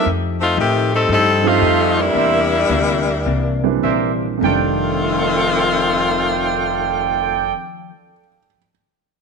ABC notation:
X:1
M:4/4
L:1/8
Q:"Swing" 1/4=100
K:Fmix
V:1 name="Trumpet section"
z4 z [GAef]3 | [Bcd=e] z4 z [Bcde] z | [Adg]8- | [Adg]8 |]
V:2 name="Saxophone section"
z [A,CEF] [E,A,CG] [G,CEA] [G,CEA] [A,CEF]2 [G,B,D=E]- | [G,B,D=E]6 z2 | [E,A,CF]8- | [E,A,CF]8 |]
V:3 name="Grand piano"
z8 | z8 | z2 [FAdad'f']6- | [FAdad'f']8 |]
V:4 name="Grand piano" clef=bass
z4 z [F,G,A,CE]3 | z4 z [=E,G,B,CD]3 | [F,,C,E,G,A,D]8- | [F,,C,E,G,A,D]8 |]
V:5 name="Hollow-body jazz guitar"
[F,A,EG] z [F,A,EG] z [F,A,EG] z [F,A,EG] z | [C,=E,B,D] z [C,E,B,D] z [C,E,B,D] z [C,E,B,D] z | [F,,E,A,D]8- | [F,,E,A,D]8 |]
V:6 name="Upright bass" clef=bass
F,,2 A,,2 G,,2 F,,2 | =E,,2 D,,2 C,,2 B,,,2 | F,,,8- | F,,,8 |]